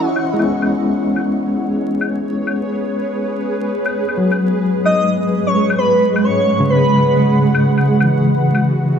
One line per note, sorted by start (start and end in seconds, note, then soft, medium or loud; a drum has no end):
0.00 0.20 C#4 medium
0.00 1.51 E4 medium
0.00 1.39 D#5 medium
0.00 0.63 F#5 medium
0.00 1.19 G#5 medium
0.16 claves medium
0.22 7.39 G#4 medium
0.33 1.65 G#3 medium
0.38 1.67 B3 soft
0.38 claves soft
0.44 1.70 C#4 soft
0.62 claves soft
0.69 4.53 C#5 medium
1.07 8.54 B4 medium
1.16 claves soft
2.01 claves medium
2.47 claves soft
3.69 7.39 G#3 medium
3.85 claves soft
4.08 claves soft
4.17 5.49 F#3 medium
4.31 claves soft
4.85 5.10 D#5 medium
4.85 claves soft
5.34 8.03 F#5 medium
5.47 5.52 C#5 medium
5.54 5.64 C#5 medium
5.70 claves medium
5.78 6.03 B4 medium
6.16 claves soft
6.24 6.62 C#5 medium
6.60 7.59 C#3 medium
6.70 7.36 B4 medium
7.40 8.99 F#4 medium
7.54 claves medium
7.78 claves soft
7.82 8.99 E5 medium
8.00 8.99 E3 soft
8.00 claves soft
8.08 8.99 G#5 medium
8.32 8.99 A5 medium
8.55 claves soft